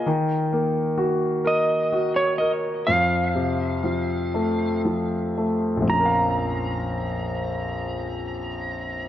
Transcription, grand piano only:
X:1
M:6/8
L:1/8
Q:3/8=40
K:Bbm
V:1 name="Grand piano"
E, B, G B G B | F,, C, F, =A, F, A, | [B,,,F,,F,DBf]6 |]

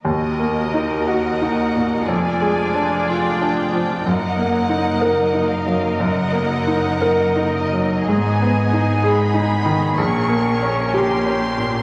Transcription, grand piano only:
X:1
M:4/4
L:1/8
Q:1/4=61
K:Ebm
V:1 name="Grand piano"
(3E,, B, E (3G E B,, (3F,, A, =D (3F D F, | (3G,, B, E (3B E G, (3G,, B, E (3B E G, | (3A,, C E (3A E E, (3B,,, B, D (3=G D B,, |]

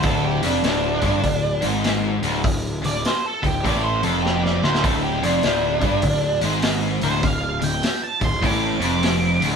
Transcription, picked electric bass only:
X:1
M:4/4
L:1/8
Q:"Swing" 1/4=100
K:Dm
V:1 name="Picked electric bass" clef=bass
D,,, F,,, D,,, G,,, D,,, ^G,,,2 D,,, | D,,, D,,, z D,,, A,,, F,,,2 D,,, | D,,, F,,, D,,, G,,, D,,, ^G,,,2 D,,, | D,,, D,,, z D,,, A,,, F,,,2 D,,, |]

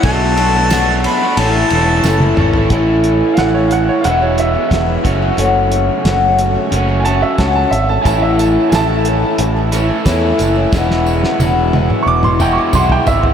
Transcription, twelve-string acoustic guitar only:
X:1
M:4/4
L:1/16
Q:1/4=90
K:A
V:1 name="Twelve-string acoustic guitar"
[B,,F,A,DF] [A,DF] [F,A,DF] [A,DF] [B,,F,A,DF]2 [F,A,DF]2 [A,,E,A,CE]2 [E,A,CE]2 [A,,E,A,CE]2 [E,A,CE] [A,CE] | [A,,E,A,CE]4 [A,,E,A,CE]2 [E,A,CE]2 [E,,B,,E,G,B,F] [E,G,B,F] [E,G,B,F] [E,G,B,F] [E,,B,,E,G,B,F]2 [F,A,CF] [F,A,CF] | [F,,C,F,A,CF]4 [F,,C,F,A,CF]2 [F,A,CF] [F,A,CF]2 [F,A,CF] [F,A,CF] [F,A,CF] [F,,C,F,A,CF]2 [F,A,CF] [F,A,CF] | [A,,E,A,CE]4 [A,,E,A,CE]2 [E,A,CE] [A,CE]2 [A,CE] [E,A,CE] [A,CE] [A,,E,A,CE]2 [E,A,CE] [A,CE] |
[E,,B,,F,G,B,E]4 [E,,B,,F,G,B,E]2 [F,G,B,E]3 [F,G,B,E] [F,G,B,E]2 [E,,B,,F,G,B,E]2 [F,G,B,E] [F,G,B,E] |]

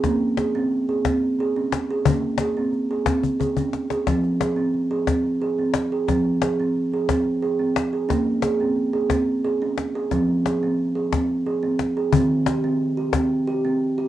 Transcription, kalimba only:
X:1
M:6/8
L:1/16
Q:3/8=60
K:Fm
V:1 name="Kalimba"
D2 A C2 A C2 A D2 A | D2 A C2 A C2 A D2 A | C2 A C2 A C2 A C2 A | C2 A C2 A C2 A C2 A |
D2 A C2 A C2 A D2 A | C2 A C2 A C2 A C2 A | C2 G C2 G C2 G C2 G |]
V:2 name="Kalimba" clef=bass
B,12 | B,12 | F,12 | F,12 |
B,12 | F,12 | E,12 |]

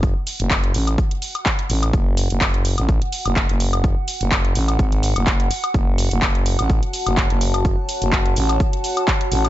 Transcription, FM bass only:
X:1
M:4/4
L:1/16
Q:"Swing 16ths" 1/4=126
K:F#m
V:1 name="FM bass" clef=bass
F,,, z2 F,,,3 A,,,2 z6 A,,,2 | F,,,3 F,,,4 A,,,2 z2 F,,,2 F,,,3- | F,,, z2 F,,,3 A,,,2 G,,,3 F,,, F,,,2 z2 | F,,,3 F,,,4 A,,,2 z2 F,,,2 F,,,3- |
F,,, z2 F,,,3 A,,,2 z6 A,,,2 |]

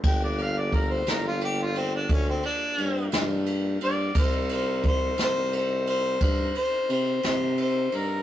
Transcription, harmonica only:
X:1
M:12/8
L:1/16
Q:3/8=58
K:Gm
V:1 name="Harmonica"
g d f d B c B F G F C D ^C =C D4 z4 d2 | c2 c2 c2 c2 c2 c2 c2 c2 c2 c2 c2 B2 |]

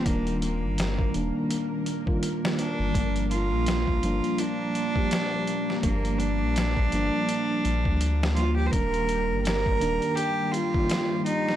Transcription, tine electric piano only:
X:1
M:4/4
L:1/16
Q:"Swing 16ths" 1/4=83
K:Gm
V:1 name="Tine electric piano" clef=bass
[E,G,B,D]6 [E,G,B,D]4- [E,G,B,D] [E,G,B,F]4- [E,G,B,F] | [F,G,B,D]6 [F,G,B,D]4- [F,G,B,D] [F,G,B,G]4- [F,G,B,G] | [F,G,B,D]6 [F,G,B,D]4- [F,G,B,D] z3 [F,G,B,F]2 | [E,G,B,D]6 [E,G,B,D]4- [E,G,B,D] [E,G,B,F]4- [E,G,B,F] |]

